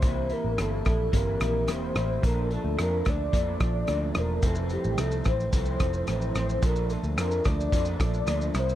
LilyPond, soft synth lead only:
\new Staff \with { instrumentName = "Soft synth lead" } { \time 4/4 \key bes \lydian \tempo 4 = 109 c''8 bes'8 a'4 bes'4 c''8 c''8 | bes'8 a'8 bes'8 d''2 bes'8 | a'8 g'8 a'8 c''2 c''8 | bes'8 a'8 bes'8 d''2 c''8 | }